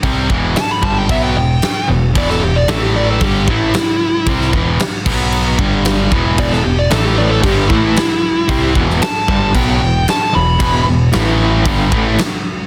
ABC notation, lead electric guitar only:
X:1
M:4/4
L:1/16
Q:1/4=114
K:Em
V:1 name="Lead electric guitar"
z4 a b a g e g g4 z2 | d A G d A G d A G2 E6- | E2 z12 z2 | d A G d A G d A G2 E6- |
E2 z2 a4 g4 a2 b2- | b2 z12 z2 |]